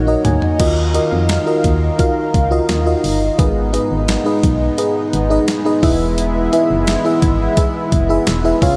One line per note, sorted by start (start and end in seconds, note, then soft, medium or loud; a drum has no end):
0.00 0.16 A#1 medium
0.00 0.56 F#3 medium
0.00 0.57 A#3 medium
0.00 0.07 D#4 medium
0.00 0.56 D#4 medium
0.00 0.07 F#4 medium
0.00 0.08 A#4 medium
0.00 0.62 C#5 medium
0.00 0.08 D#5 medium
0.00 0.22 F#5 medium
0.07 0.50 D#4 medium
0.07 0.50 F#4 medium
0.07 0.50 A#4 medium
0.07 0.51 D#5 medium
0.25 0.38 D2 medium
0.25 0.57 G#5 medium
0.25 closed hi-hat medium
0.25 mid tom medium
0.42 floor tom medium
0.59 0.99 D#2 loud
0.59 1.60 D#3 medium
0.59 3.36 D#3 medium
0.59 5.79 D#4 medium
0.59 0.88 F4 medium
0.59 0.88 F#4 medium
0.59 3.36 A#4 medium
0.59 0.88 A#4 medium
0.59 0.89 D#5 medium
0.59 3.36 F5 medium
0.59 kick loud
0.59 closed hi-hat medium
0.59 crash medium
0.94 1.37 F4 medium
0.94 1.37 F#4 medium
0.94 1.38 A#4 medium
0.94 1.38 D#5 medium
0.94 closed hi-hat medium
1.12 1.38 F2 medium
1.29 snare loud
1.29 closed hi-hat medium
1.46 1.89 F4 medium
1.46 1.90 F#4 medium
1.46 1.90 A#4 medium
1.46 1.90 D#5 medium
1.64 1.91 D#2 medium
1.64 kick medium
1.64 closed hi-hat medium
1.98 2.42 F4 medium
1.98 2.42 F#4 medium
1.98 2.42 A#4 medium
1.98 2.42 F5 medium
1.98 kick medium
1.98 closed hi-hat medium
2.34 2.60 C#2 medium
2.34 kick medium
2.34 closed hi-hat medium
2.51 2.80 F4 medium
2.51 2.80 F#4 medium
2.51 2.80 A#4 medium
2.51 2.80 D#5 medium
2.69 2.95 D#2 loud
2.69 snare medium
2.69 closed hi-hat medium
2.86 3.29 F4 medium
2.86 3.29 F#4 medium
2.86 3.29 A#4 medium
2.86 3.29 D#5 medium
3.04 3.30 G1 medium
3.04 open hi-hat medium
3.38 3.78 G#1 loud
3.38 4.39 G#2 medium
3.38 8.58 G#3 medium
3.38 8.58 B3 medium
3.38 3.67 D#4 medium
3.38 3.67 G#4 medium
3.38 3.67 B4 medium
3.38 3.68 D#5 medium
3.38 kick loud
3.38 closed hi-hat medium
3.73 4.16 D#4 medium
3.73 4.16 G#4 medium
3.73 4.17 B4 medium
3.73 4.17 D#5 medium
3.73 closed hi-hat medium
3.91 4.17 G#1 medium
4.08 snare loud
4.08 closed hi-hat medium
4.25 4.68 D#4 medium
4.25 4.69 G#4 medium
4.25 4.69 B4 medium
4.25 4.69 D#5 medium
4.43 4.70 B1 loud
4.43 kick medium
4.43 closed hi-hat medium
4.78 5.21 D#4 medium
4.78 5.21 G#4 medium
4.78 5.21 B4 medium
4.78 5.21 D#5 medium
4.78 closed hi-hat medium
5.13 5.39 G#1 medium
5.13 closed hi-hat medium
5.30 5.59 D#4 medium
5.30 5.59 G#4 medium
5.30 5.59 B4 medium
5.30 5.60 D#5 medium
5.48 snare loud
5.48 closed hi-hat medium
5.65 5.83 D#4 medium
5.65 5.82 G#4 medium
5.65 5.82 B4 medium
5.65 5.83 D#5 medium
5.82 6.48 E1 loud
5.82 6.84 E3 medium
5.82 6.40 E4 medium
5.82 8.59 E4 medium
5.82 6.40 G#4 medium
5.82 6.40 B4 medium
5.82 6.40 E5 loud
5.82 kick loud
5.82 open hi-hat medium
6.18 closed hi-hat medium
6.52 6.95 E4 medium
6.52 6.96 G#4 medium
6.52 6.96 B4 medium
6.52 6.96 E5 medium
6.52 closed hi-hat medium
6.70 6.97 F#1 medium
6.87 snare loud
6.87 closed hi-hat medium
7.05 7.48 E4 medium
7.05 7.48 G#4 medium
7.05 7.48 B4 medium
7.05 7.48 E5 medium
7.22 7.49 G#1 medium
7.22 kick medium
7.22 closed hi-hat medium
7.57 8.00 E4 medium
7.57 8.00 G#4 medium
7.57 8.00 B4 medium
7.57 8.00 E5 medium
7.57 kick medium
7.57 closed hi-hat medium
7.92 8.18 F#1 loud
7.92 kick medium
7.92 closed hi-hat medium
8.09 8.38 E4 medium
8.09 8.38 G#4 medium
8.09 8.38 B4 medium
8.09 8.39 E5 loud
8.27 8.53 E1 loud
8.27 snare loud
8.27 closed hi-hat medium
8.44 8.62 E4 medium
8.44 8.61 G#4 medium
8.44 8.62 B4 medium
8.44 8.62 E5 medium
8.62 8.77 C#2 medium
8.62 8.77 C#3 medium
8.62 8.77 G#3 medium
8.62 8.77 C#4 medium
8.62 8.77 F4 medium
8.62 8.77 G#4 medium
8.62 8.77 C#5 medium
8.62 8.77 F5 loud
8.62 kick loud
8.62 open hi-hat medium